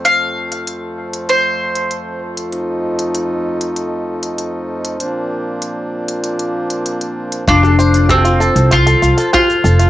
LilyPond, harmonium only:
<<
  \new Staff \with { instrumentName = "Harmonium" } { \time 4/4 \key f \major \tempo 4 = 97 c'1 | ees'1 | d'1 | r1 | }
  \new Staff \with { instrumentName = "Harmonium" } { \clef bass \time 4/4 \key f \major << { <f, a>1~ | <f, a>1 | <bes, c'>1 | r1 | } \\ { f1~ | f1~ | f1 | r1 | } >> }
>>